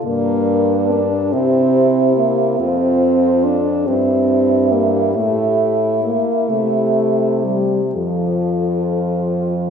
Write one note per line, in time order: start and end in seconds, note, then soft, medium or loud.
0.05 1.35 G2 soft
0.05 0.93 A#3 medium
0.05 1.34 D4 soft
0.05 1.35 A#4 soft
0.92 1.34 D4 medium
1.33 2.59 C3 soft
1.33 2.16 C4 medium
1.33 2.61 E4 soft
1.33 2.59 G4 soft
2.17 2.61 A#3 medium
2.59 3.89 F2 soft
2.59 3.46 C4 medium
2.59 3.71 F4 soft
2.59 3.87 A4 soft
3.44 3.88 D4 medium
3.86 5.16 G2 soft
3.86 4.73 C4 medium
3.86 5.13 E4 soft
3.86 6.20 G4 soft
4.71 5.14 A#3 medium
5.15 6.20 A2 soft
5.15 6.01 A3 soft
5.15 7.59 E4 soft
6.04 6.51 A#3 soft
6.47 7.91 C3 soft
6.47 7.46 A3 soft
6.47 7.97 G4 soft
7.44 7.80 G3 soft
7.95 9.70 F2 soft
7.95 9.70 F3 soft
7.95 9.70 F4 soft
7.95 9.43 A4 soft
9.53 9.70 F4 soft